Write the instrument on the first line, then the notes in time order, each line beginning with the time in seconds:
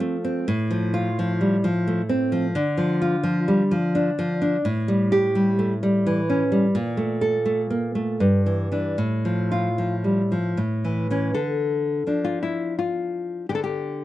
nylon-string guitar
Already playing: F3 C4
0.00 A3
0.25 C4
0.48 A2
0.71 F3
0.94 F4
1.19 F3
1.41 G3
1.64 F3
1.87 A3
2.09 C4
2.32 F3
2.55 D3
2.78 F3
3.02 F4
3.23 F3
3.48 G3
3.71 F3
3.95 D4
4.19 F3
4.42 D4
4.65 A2
4.88 G3
5.12 G4
5.35 G3
5.59 A3
5.83 G3
6.06 E3
6.30 C#4
6.52 G3
6.75 A#2
6.97 A3
7.21 A4
7.45 A3
7.70 A#3
7.95 A3
8.20 G2
8.46 E3
8.72 E3 D4
8.98 A2
9.25 F3
9.52 F4
9.78 F3
10.04 G3
10.32 F3
10.57 A2
10.84 E3
11.11 E3 C#4
11.34 D3 A4
12.07 F3 D4
12.25 F4
12.43 E4
12.79 F4
13.49 D3 G4
13.55 A4
13.64 G4